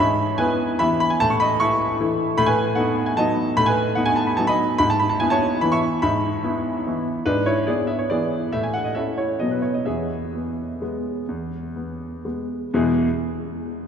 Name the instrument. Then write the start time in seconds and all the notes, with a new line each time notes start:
grand piano
0.00 G#2 E5 B5
0.38 B3 E4 B4 G#5
0.79 E3 B3 E4 E5 B5
1.00 B5
1.10 G#5
1.20 A2 A5
1.30 C#6
1.40 D#5 B5
1.60 A3 E4 E5 C#6
2.00 E3 A3 E4
2.38 A2 B5
2.46 B4 G#5
2.75 B3 D#4 A4 F#5
3.06 G#5
3.17 F#3 B3 D#4 D#5 A5
3.57 A2 B5
3.66 B4 G#5
3.95 B3 D#4 F#5
4.06 G#5
4.16 A5
4.27 B5
4.37 F#3 B3 D#4 A5
4.47 D#5 B5
4.78 G#2 B5
4.90 A5
5.00 B5
5.09 A5
5.20 B3 E4 G#5
5.30 C#5 A5
5.61 E3 B3 E4 B5
5.72 E5 C#6
6.02 G#2 E5 B5
6.43 B3 E4
6.86 E3 B3 E4
7.26 G#2 D4 B4
7.46 E4 C#5
7.67 B3 E4 G#4 D5
7.87 E5
7.99 C#5
8.10 E3 B3 E4 G#4 D5
8.52 A2 E5
8.63 G#5
8.74 F#5
8.84 D#5
8.95 C#4 E4 A4 E5
9.18 E4 C#5
9.40 B2 F#3 B3 D#5
9.51 B4
9.62 C#5
9.74 D#5
9.85 E2 G#4 E5
10.35 B3
10.82 G#3 B3
11.29 E2
11.76 B3
12.25 G#3 B3
12.74 E2 B2 G#3 B3 E4 G#4